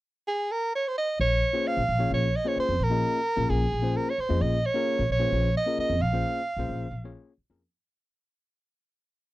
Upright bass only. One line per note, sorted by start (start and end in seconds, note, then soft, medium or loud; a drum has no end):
1.20 1.41 A#1 medium
1.77 1.88 A#1 medium
1.89 2.10 A#1 medium
2.11 2.32 A#1 medium
2.56 muted upright bass stroke soft
2.69 2.79 F2 medium
2.79 3.01 A#1 medium
3.37 3.48 A#1 medium
3.50 3.71 A#1 medium
3.72 3.93 A#1 medium
4.18 muted upright bass stroke soft
4.30 4.40 F2 medium
4.41 4.62 A#1 medium
4.99 5.09 A#1 medium
5.10 5.31 A#1 medium
5.32 5.53 A#1 medium
5.78 muted upright bass stroke soft
5.90 5.99 F2 medium
6.00 6.22 A#1 medium
6.57 6.68 A#1 medium
6.69 6.90 A#1 medium
6.91 7.13 A#1 medium
7.38 muted upright bass stroke soft
7.50 7.60 F2 medium